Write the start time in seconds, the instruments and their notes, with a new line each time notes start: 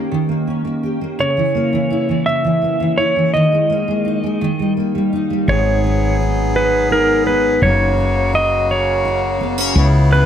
Already playing: steel-string acoustic guitar D#3 A#3 C#4 G4
0.12 steel-string acoustic guitar D#3
0.29 steel-string acoustic guitar A#3
0.47 steel-string acoustic guitar C#4
0.65 steel-string acoustic guitar A#3
0.83 steel-string acoustic guitar G4
1.01 steel-string acoustic guitar A#3
1.19 steel-string acoustic guitar C#3, electric slide guitar C#5
1.37 steel-string acoustic guitar E3
1.55 steel-string acoustic guitar A#3
1.73 steel-string acoustic guitar E3
1.90 steel-string acoustic guitar E4
2.09 steel-string acoustic guitar E3
2.26 steel-string acoustic guitar C#3, electric slide guitar E5
2.44 steel-string acoustic guitar E3
2.62 steel-string acoustic guitar A#3
2.80 steel-string acoustic guitar E3
2.98 steel-string acoustic guitar E4, electric slide guitar C#5
3.16 steel-string acoustic guitar E3
3.34 steel-string acoustic guitar D#3, electric slide guitar D#5
3.52 steel-string acoustic guitar G#3
3.70 steel-string acoustic guitar A#3
3.88 steel-string acoustic guitar G#3
4.05 steel-string acoustic guitar D#4
4.23 steel-string acoustic guitar G#3
4.41 steel-string acoustic guitar D#3
4.59 steel-string acoustic guitar G3
4.77 steel-string acoustic guitar A#3
4.95 steel-string acoustic guitar G3
5.13 steel-string acoustic guitar D#4
5.30 steel-string acoustic guitar G3
5.48 fretless electric bass G#1, steel-string acoustic guitar G#2, accordion F#3 B3 G#4, electric slide guitar C#5
5.84 steel-string acoustic guitar B3
6.20 steel-string acoustic guitar D#4
6.55 steel-string acoustic guitar B3, electric slide guitar B4
6.90 steel-string acoustic guitar D#4, electric slide guitar A#4
7.26 steel-string acoustic guitar B3, electric slide guitar B4
7.62 fretless electric bass F#1, steel-string acoustic guitar F#2, accordion C#3 A#3 F#4, electric slide guitar C#5
7.98 steel-string acoustic guitar C#4
8.33 steel-string acoustic guitar F#4, electric slide guitar D#5
8.69 steel-string acoustic guitar C#4, electric slide guitar C#5
9.05 steel-string acoustic guitar F#4
9.41 steel-string acoustic guitar B3
9.58 steel-string acoustic guitar C#4
9.76 fretless electric bass C#2, steel-string acoustic guitar C#3, accordion C#3 B3 E4
10.12 steel-string acoustic guitar C#4, electric slide guitar B4